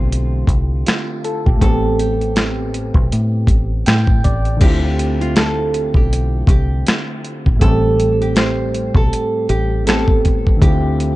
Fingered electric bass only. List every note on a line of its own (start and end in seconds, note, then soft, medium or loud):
0.00 0.44 B1 loud
0.48 0.83 C2 medium
1.47 1.61 A#1 medium
1.62 2.92 A1 loud
2.95 3.10 B1 loud
3.13 3.46 A2 loud
3.48 3.83 A1 medium
3.87 4.21 A2 loud
4.25 4.59 A1 medium
4.62 5.92 D2 loud
5.95 6.44 B1 medium
6.48 6.83 C2 medium
7.47 7.60 A#1 medium
7.62 8.92 A1 loud
8.95 9.10 B1 loud
9.50 10.05 A1 medium
10.62 11.16 D2 loud